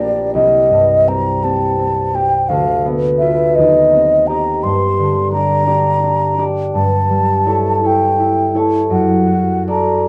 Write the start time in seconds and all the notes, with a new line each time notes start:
Already playing: A#1 D4 D5
0.00 G4 A#4
0.35 C2 D#5
0.70 G2
1.07 C4 G4 A#5
1.43 C4 G4 A5
1.79 C4
2.15 C4 G4 G5
2.49 D2 F5
2.85 B3
3.18 F4 B4 E5
3.55 D#2 D#5
3.93 C4
4.27 G4 D#5 A#5
4.63 G2 C6
4.99 D3
5.32 D4 G4 A#5
5.36 D5
5.67 D4 G4 D5
6.03 D4
6.38 D4 G4 D5
6.75 G2 A5
7.10 G3
7.46 E4 A4 C#5
7.83 E4 A4 C#5 G5
8.20 E4
8.55 E4 A4 C#5
8.90 F#2 F#5
9.27 F#4
9.68 A4 D5 A#5